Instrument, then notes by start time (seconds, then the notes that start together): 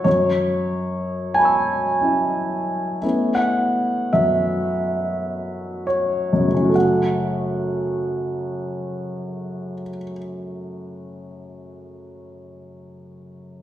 grand piano
0.04 F#2 C#5
1.34 G#5 A5
1.39 B5 C#6
1.45 E6
2.01 C#4 E4
3.02 A3 B3 C#4 E4
3.35 F#5
4.13 F#2 E5
5.87 C#5
6.33 F#2
6.40 C#3
6.47 A3
6.55 C#4
6.62 F#4
6.69 A4
6.75 F#5